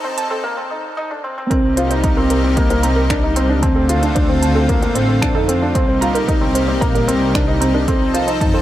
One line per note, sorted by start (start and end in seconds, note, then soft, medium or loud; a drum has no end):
0.00 0.43 F2 medium
0.00 0.43 C3 medium
0.00 0.25 C4 medium
0.00 0.43 D#4 medium
0.00 0.43 A4 medium
0.04 0.08 C5 medium
0.17 0.23 A5 medium
0.17 closed hi-hat medium
0.30 0.41 C4 medium
0.30 0.34 A4 loud
0.44 0.54 A#3 medium
0.57 0.68 C4 medium
0.71 0.92 D#4 medium
0.97 1.08 D#4 medium
1.11 1.21 D4 medium
1.24 1.35 C4 medium
1.38 1.48 C4 medium
1.50 3.63 C2 loud
1.50 3.61 C3 medium
1.50 3.61 G3 medium
1.50 3.61 A#3 medium
1.50 1.72 C4 medium
1.50 3.61 D#4 medium
1.50 1.58 A#4 medium
1.50 kick loud
1.50 closed hi-hat soft
1.77 1.88 F4 medium
1.77 1.82 C5 medium
1.77 closed hi-hat medium
1.91 2.01 D#4 medium
1.91 1.94 C5 medium
1.91 closed hi-hat soft
2.04 2.14 D#4 medium
2.04 2.09 A#5 loud
2.04 kick loud
2.04 closed hi-hat soft
2.17 2.38 C4 medium
2.17 2.20 A#4 medium
2.30 2.38 A#4 medium
2.30 closed hi-hat medium
2.44 2.54 C4 medium
2.57 2.68 A#3 medium
2.57 2.62 C5 medium
2.57 kick loud
2.57 closed hi-hat soft
2.70 2.81 A#3 medium
2.70 2.73 C5 medium
2.70 closed hi-hat soft
2.83 3.05 C4 medium
2.83 2.88 A#5 loud
2.83 closed hi-hat medium
2.96 3.00 A#4 loud
3.10 3.20 D4 medium
3.10 3.18 A#4 medium
3.10 finger snap medium
3.10 kick loud
3.10 closed hi-hat soft
3.23 3.33 D#4 medium
3.36 3.47 C4 medium
3.36 3.41 C5 medium
3.36 closed hi-hat medium
3.49 3.60 D4 medium
3.49 3.53 C5 medium
3.62 4.12 D2 loud
3.62 5.73 D3 medium
3.62 5.74 A3 medium
3.62 3.84 C4 medium
3.62 5.73 C4 medium
3.62 5.73 F4 medium
3.62 3.68 A5 loud
3.62 kick loud
3.62 closed hi-hat soft
3.76 3.79 A4 loud
3.89 4.00 F4 medium
3.89 3.97 A4 medium
3.89 closed hi-hat medium
4.03 4.13 D4 medium
4.03 closed hi-hat soft
4.15 4.92 D2 loud
4.15 4.26 D4 medium
4.15 4.21 C5 medium
4.15 kick loud
4.15 closed hi-hat soft
4.29 4.50 C4 medium
4.29 4.32 C5 medium
4.42 4.48 A5 loud
4.42 closed hi-hat medium
4.55 4.66 C4 medium
4.55 4.59 A4 loud
4.68 4.80 A#3 medium
4.68 4.77 A4 medium
4.68 kick loud
4.68 closed hi-hat soft
4.82 4.93 A#3 medium
4.82 closed hi-hat soft
4.95 5.36 A1 medium
4.95 5.17 C4 medium
4.95 5.00 C5 medium
4.95 closed hi-hat medium
5.09 5.12 C5 medium
5.22 5.33 D4 medium
5.22 5.27 A5 loud
5.22 finger snap medium
5.22 kick loud
5.22 closed hi-hat soft
5.35 5.71 F2 medium
5.35 5.46 D#4 medium
5.35 5.38 A4 loud
5.48 5.59 C4 medium
5.48 5.56 A4 medium
5.48 closed hi-hat medium
5.62 5.73 D4 medium
5.74 6.25 C2 medium
5.74 7.85 C3 medium
5.74 7.85 G3 medium
5.74 7.85 A#3 medium
5.74 5.96 C4 medium
5.74 8.62 D#4 medium
5.74 5.80 C5 medium
5.74 kick loud
5.74 closed hi-hat soft
5.88 5.91 C5 medium
6.01 6.12 F4 medium
6.01 6.07 A#5 loud
6.01 closed hi-hat medium
6.15 6.26 D#4 medium
6.15 6.18 A#4 loud
6.15 closed hi-hat soft
6.28 6.78 C2 medium
6.28 6.39 D#4 medium
6.28 6.36 A#4 medium
6.28 kick loud
6.28 closed hi-hat soft
6.41 6.62 C4 medium
6.55 6.60 C5 medium
6.55 closed hi-hat medium
6.68 6.79 C4 medium
6.68 6.71 C5 medium
6.81 7.03 A#1 medium
6.81 6.92 A#3 medium
6.81 6.86 A#5 loud
6.81 kick loud
6.81 closed hi-hat soft
6.95 7.05 A#3 medium
6.95 6.98 A#4 loud
6.95 closed hi-hat soft
7.08 7.84 C2 loud
7.08 7.29 C4 medium
7.08 7.16 A#4 medium
7.08 closed hi-hat medium
7.34 7.45 D4 medium
7.34 7.40 C5 medium
7.34 finger snap medium
7.34 kick loud
7.34 closed hi-hat soft
7.47 7.58 D#4 medium
7.47 7.51 C5 medium
7.61 7.71 C4 medium
7.61 7.66 A#5 loud
7.61 closed hi-hat medium
7.74 7.85 D4 medium
7.74 7.77 A#4 loud
7.87 8.62 F3 medium
7.87 8.62 C4 medium
7.87 8.09 C4 loud
7.87 7.95 A4 medium
7.87 8.62 A4 medium
7.87 kick loud
7.87 closed hi-hat soft
8.14 8.25 F4 medium
8.14 8.19 C5 medium
8.14 closed hi-hat medium
8.27 8.38 D#4 medium
8.27 8.31 C5 medium
8.27 closed hi-hat soft
8.41 8.62 F2 loud
8.41 8.51 D#4 medium
8.41 8.46 A5 loud
8.41 kick loud
8.41 closed hi-hat soft
8.54 8.62 C4 medium
8.54 8.57 A4 loud